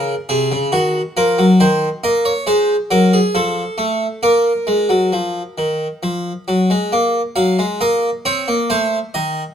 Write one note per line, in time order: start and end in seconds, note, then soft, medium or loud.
0.00 0.13 C#3 medium
0.00 0.13 A#4 medium
0.29 0.51 C3 medium
0.29 0.57 G#4 medium
0.52 0.73 C#3 medium
0.72 1.00 D#3 medium
0.72 1.00 F#4 medium
1.17 1.38 F3 medium
1.17 1.44 A#4 medium
1.38 1.60 F#3 medium
1.60 1.87 D#3 medium
1.60 1.87 C5 medium
2.04 2.31 A#3 medium
2.04 2.25 D#5 medium
2.25 2.47 C#5 medium
2.47 2.74 G#3 medium
2.47 2.74 C5 medium
2.91 3.18 F#3 medium
2.91 3.12 A#4 medium
3.13 3.35 G#4 medium
3.35 3.62 F3 medium
3.35 4.20 A4 medium
3.78 4.06 A3 medium
4.23 4.51 A#3 medium
4.23 6.44 A#4 medium
4.67 4.89 G#3 medium
4.89 5.12 F#3 medium
5.13 5.41 F3 medium
5.58 5.86 D#3 medium
6.03 6.31 F3 medium
6.48 6.70 F#3 medium
6.70 6.92 G#3 medium
6.92 7.20 A#3 medium
7.36 7.58 F#3 medium
7.36 7.63 F5 medium
7.59 7.80 G#3 medium
7.81 8.08 A#3 medium
7.81 8.08 D#5 medium
8.25 8.47 C4 medium
8.25 8.53 C#5 loud
8.48 8.69 A#3 medium
8.70 8.97 A3 medium
8.70 8.97 C5 medium
9.14 9.42 D#3 medium
9.14 9.42 D#5 loud